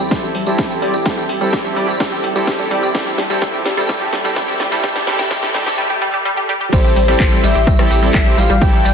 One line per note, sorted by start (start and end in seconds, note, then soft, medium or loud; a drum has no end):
0.00 riser medium
0.11 0.30 A1 medium
0.11 0.16 G3 loud
0.11 0.29 C4 medium
0.11 0.29 E4 medium
0.11 0.29 G4 medium
0.11 0.29 A4 medium
0.11 kick loud
0.11 snare medium
0.11 closed hi-hat medium
0.11 tambourine medium
0.23 0.34 G4 medium
0.23 closed hi-hat soft
0.23 tambourine soft
0.35 0.54 A1 medium
0.35 0.42 G3 medium
0.35 open hi-hat loud
0.46 0.51 G3 medium
0.46 0.79 C4 medium
0.46 0.79 E4 medium
0.46 0.79 G4 medium
0.46 0.79 A4 medium
0.46 closed hi-hat medium
0.46 tambourine medium
0.58 0.77 A1 medium
0.58 0.69 G4 medium
0.58 kick loud
0.58 snare medium
0.58 closed hi-hat medium
0.58 tambourine medium
0.70 0.77 G3 medium
0.70 closed hi-hat soft
0.70 tambourine soft
0.82 0.92 A1 loud
0.82 0.86 G3 loud
0.82 0.93 C4 medium
0.82 0.93 E4 medium
0.82 0.93 G4 medium
0.82 0.93 D5 medium
0.82 open hi-hat medium
0.94 1.03 A1 medium
0.94 1.04 G4 medium
0.94 closed hi-hat soft
0.94 tambourine medium
1.05 1.24 A1 medium
1.05 1.10 G3 loud
1.05 1.23 C4 medium
1.05 1.23 E4 medium
1.05 1.23 G4 medium
1.05 1.23 A4 medium
1.05 kick loud
1.05 snare medium
1.05 closed hi-hat medium
1.05 tambourine medium
1.17 1.28 G4 medium
1.17 tambourine soft
1.29 1.48 A1 medium
1.29 1.36 G3 medium
1.29 open hi-hat loud
1.41 1.45 G3 loud
1.41 1.74 C4 medium
1.41 1.74 E4 medium
1.41 1.74 G4 medium
1.41 1.74 A4 medium
1.41 closed hi-hat medium
1.41 tambourine medium
1.53 1.62 A1 medium
1.53 1.64 G4 medium
1.53 kick loud
1.53 snare medium
1.53 closed hi-hat medium
1.53 tambourine medium
1.65 1.72 G3 medium
1.65 closed hi-hat soft
1.65 tambourine soft
1.76 1.86 A1 loud
1.76 1.81 G3 medium
1.76 1.88 C4 medium
1.76 1.88 E4 medium
1.76 1.88 G4 medium
1.76 1.88 D5 medium
1.76 open hi-hat medium
1.88 1.98 A1 loud
1.88 1.98 G4 medium
1.88 closed hi-hat medium
1.88 tambourine medium
2.00 2.19 A1 medium
2.00 2.04 G3 loud
2.00 2.18 C4 medium
2.00 2.18 E4 medium
2.00 2.18 G4 medium
2.00 2.18 A4 medium
2.00 kick loud
2.00 snare medium
2.00 closed hi-hat medium
2.00 tambourine medium
2.12 2.23 G4 medium
2.12 closed hi-hat soft
2.12 tambourine soft
2.24 2.42 A1 medium
2.24 2.31 G3 medium
2.24 open hi-hat loud
2.36 2.40 G3 loud
2.36 2.68 C4 medium
2.36 2.68 E4 medium
2.36 2.68 G4 medium
2.36 2.68 A4 medium
2.36 closed hi-hat medium
2.36 tambourine medium
2.47 2.66 A1 medium
2.47 2.58 G4 medium
2.47 kick loud
2.47 snare medium
2.47 closed hi-hat medium
2.47 tambourine medium
2.59 2.66 G3 medium
2.59 closed hi-hat soft
2.59 tambourine soft
2.71 2.80 A1 loud
2.71 2.75 G3 loud
2.71 2.82 C4 medium
2.71 2.82 E4 medium
2.71 2.82 G4 medium
2.71 2.82 D5 medium
2.71 open hi-hat medium
2.83 2.92 A1 medium
2.83 2.93 G4 medium
2.83 closed hi-hat medium
2.83 tambourine medium
2.95 3.13 A1 medium
2.95 2.99 G3 loud
2.95 3.12 C4 medium
2.95 3.12 E4 medium
2.95 3.12 G4 medium
2.95 3.12 A4 medium
2.95 kick loud
2.95 snare medium
2.95 closed hi-hat medium
2.95 tambourine medium
3.06 3.17 G4 medium
3.06 tambourine soft
3.18 3.37 A1 medium
3.18 3.26 G3 medium
3.18 snare medium
3.18 open hi-hat loud
3.30 3.34 G3 loud
3.30 3.40 C4 medium
3.30 3.40 E4 medium
3.30 3.40 G4 medium
3.30 3.40 A4 medium
3.30 closed hi-hat medium
3.30 tambourine medium
3.42 3.51 A1 medium
3.42 3.46 G3 loud
3.42 3.59 C4 medium
3.42 3.59 E4 medium
3.42 3.59 G4 medium
3.42 3.59 A4 medium
3.42 kick loud
3.42 snare medium
3.42 closed hi-hat medium
3.42 tambourine medium
3.54 3.64 G4 medium
3.54 tambourine soft
3.65 3.75 A1 loud
3.65 3.73 G3 medium
3.65 snare medium
3.65 open hi-hat medium
3.77 3.87 A1 loud
3.77 3.82 G3 loud
3.77 3.87 C4 medium
3.77 3.87 E4 medium
3.77 3.87 G4 medium
3.77 3.87 A4 loud
3.77 closed hi-hat medium
3.77 tambourine medium
3.88 4.08 A1 medium
3.88 3.93 G3 loud
3.88 4.07 C4 medium
3.88 4.07 E4 medium
3.88 4.07 G4 medium
3.88 4.07 A4 medium
3.88 kick loud
3.88 snare medium
3.88 closed hi-hat medium
3.88 tambourine medium
4.01 4.12 G4 medium
4.01 closed hi-hat soft
4.01 tambourine soft
4.13 4.31 A1 medium
4.13 4.20 G3 medium
4.13 snare medium
4.13 open hi-hat loud
4.25 4.29 G3 loud
4.25 4.35 C4 medium
4.25 4.35 E4 medium
4.25 4.35 G4 medium
4.25 4.35 A4 medium
4.25 closed hi-hat medium
4.25 tambourine medium
4.36 4.55 A1 medium
4.36 4.41 G3 loud
4.36 4.54 C4 medium
4.36 4.54 E4 medium
4.36 4.54 G4 medium
4.36 4.54 A4 medium
4.36 kick loud
4.36 snare medium
4.36 closed hi-hat medium
4.36 tambourine medium
4.48 4.59 G4 medium
4.48 closed hi-hat soft
4.48 tambourine soft
4.60 4.69 A1 medium
4.60 4.67 G3 medium
4.60 snare medium
4.60 open hi-hat medium
4.72 4.81 A1 medium
4.72 4.76 G3 loud
4.72 4.82 C4 medium
4.72 4.82 E4 medium
4.72 4.82 G4 medium
4.72 4.82 A4 medium
4.72 closed hi-hat medium
4.72 tambourine medium
4.83 5.02 A1 medium
4.83 4.88 G3 loud
4.83 5.01 C4 medium
4.83 5.01 E4 medium
4.83 5.01 A4 medium
4.83 kick loud
4.83 snare medium
4.83 closed hi-hat medium
4.83 tambourine medium
4.96 5.05 G4 medium
4.96 snare medium
4.96 closed hi-hat soft
4.96 tambourine soft
5.07 5.26 A1 medium
5.07 5.12 G3 loud
5.07 5.25 C4 medium
5.07 5.25 E4 medium
5.07 5.25 G4 medium
5.07 5.25 A4 loud
5.07 snare loud
5.07 open hi-hat loud
5.19 5.29 G4 medium
5.19 snare medium
5.19 closed hi-hat medium
5.19 tambourine medium
5.31 5.40 A1 medium
5.31 5.35 G3 loud
5.31 5.48 C4 medium
5.31 5.48 E4 medium
5.31 5.48 G4 medium
5.31 5.48 A4 medium
5.31 kick loud
5.31 snare loud
5.31 closed hi-hat medium
5.31 tambourine medium
5.43 5.53 G4 medium
5.43 snare medium
5.43 closed hi-hat soft
5.43 tambourine soft
5.54 5.64 A1 loud
5.54 5.59 G3 loud
5.54 5.72 C4 medium
5.54 5.72 E4 medium
5.54 5.72 G4 medium
5.54 5.72 A4 medium
5.54 snare loud
5.54 open hi-hat medium
5.66 5.76 A1 loud
5.66 5.76 G4 medium
5.66 snare medium
5.66 closed hi-hat medium
5.66 tambourine medium
5.78 5.82 G3 loud
5.78 swell medium
5.90 6.00 G4 medium
6.02 6.06 G3 loud
6.14 6.24 G4 medium
6.25 6.30 G3 loud
6.37 6.47 G4 medium
6.49 6.53 G3 loud
6.61 6.71 G4 medium
6.72 6.91 A1 loud
6.72 6.77 G3 loud
6.72 6.90 C4 medium
6.72 6.90 E4 medium
6.72 6.90 G4 medium
6.72 6.90 A4 medium
6.72 7.45 C5 loud
6.72 kick loud
6.72 closed hi-hat medium
6.72 crash loud
6.72 tambourine medium
6.85 6.95 G4 medium
6.85 closed hi-hat soft
6.85 tambourine soft
6.95 7.15 A1 medium
6.95 7.04 G3 medium
6.95 open hi-hat loud
6.95 tambourine loud
7.08 7.12 G3 loud
7.08 7.41 C4 medium
7.08 7.41 E4 medium
7.08 7.41 G4 medium
7.08 7.41 A4 loud
7.08 closed hi-hat medium
7.08 tambourine soft
7.20 7.29 A1 medium
7.20 7.31 G4 medium
7.20 kick loud
7.20 clap loud
7.20 closed hi-hat medium
7.20 tambourine medium
7.32 7.39 G3 medium
7.32 closed hi-hat soft
7.32 tambourine soft
7.43 7.53 A1 loud
7.43 7.48 G3 loud
7.43 7.54 C4 medium
7.43 7.54 E4 medium
7.43 7.54 G4 medium
7.43 7.54 C5 medium
7.43 8.14 E5 loud
7.43 open hi-hat loud
7.43 tambourine loud
7.55 7.65 A1 loud
7.55 7.66 G4 medium
7.55 closed hi-hat medium
7.55 tambourine soft
7.67 7.86 A1 medium
7.67 7.74 G3 medium
7.67 kick loud
7.67 cross-stick medium
7.67 closed hi-hat medium
7.67 tambourine medium
7.79 7.83 G3 loud
7.79 7.90 C4 loud
7.79 7.90 E4 medium
7.79 7.90 G4 medium
7.79 7.90 A4 loud
7.79 cross-stick medium
7.79 closed hi-hat soft
7.79 tambourine soft
7.91 8.09 A1 medium
7.91 8.02 G4 medium
7.91 open hi-hat loud
7.91 tambourine loud
8.03 8.10 G3 medium
8.03 8.20 C4 medium
8.03 8.20 E4 medium
8.03 8.20 G4 medium
8.03 8.20 A4 medium
8.03 closed hi-hat medium
8.03 tambourine soft
8.14 8.33 A1 medium
8.14 8.19 G3 loud
8.14 8.39 E5 loud
8.14 kick loud
8.14 clap loud
8.14 closed hi-hat medium
8.14 tambourine medium
8.26 8.37 C4 medium
8.26 8.37 E4 medium
8.26 8.37 G4 medium
8.26 8.37 C5 medium
8.26 tambourine soft
8.38 8.47 A1 loud
8.38 8.45 G3 medium
8.38 8.63 F5 loud
8.38 open hi-hat medium
8.38 tambourine medium
8.50 8.59 A1 medium
8.50 8.54 G3 loud
8.50 closed hi-hat medium
8.50 tambourine soft
8.61 8.80 A1 medium
8.61 8.79 C4 medium
8.61 8.79 E4 medium
8.61 8.72 G4 medium
8.61 8.79 G4 medium
8.61 8.79 A4 medium
8.61 8.94 G5 loud
8.61 kick loud
8.61 closed hi-hat medium
8.61 tambourine medium
8.73 8.81 G3 medium
8.73 closed hi-hat soft
8.73 tambourine soft
8.85 8.94 A1 medium
8.85 8.89 G3 loud
8.85 open hi-hat loud
8.85 tambourine loud